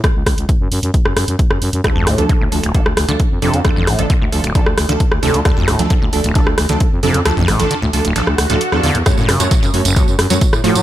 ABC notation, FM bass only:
X:1
M:4/4
L:1/16
Q:1/4=133
K:Dlyd
V:1 name="FM bass" clef=bass
z C,, C,, C,, z F,, F,, F,, z F,, F,, F,, z F,, F,, F,, | z D,, D,, D,, z D,, D,, D,, z D,, D,, D,, z =F,, F,, F,, | z A,,, A,,, A,,, z D,, D,, D,, z D,, D,, D,, z D,, D,, D,, | z D,, D,, D,, z D,, D,, D,, z D,, D,, D,, z =F,, F,, F,, |
z A,,, A,,, A,,, z D,, D,, D,, z D,, D,, D,, z E,, E,, E,, | z F,, F,, F,, z F,, F,, F,, z F,, F,, F,, z A,, A,, A,, |]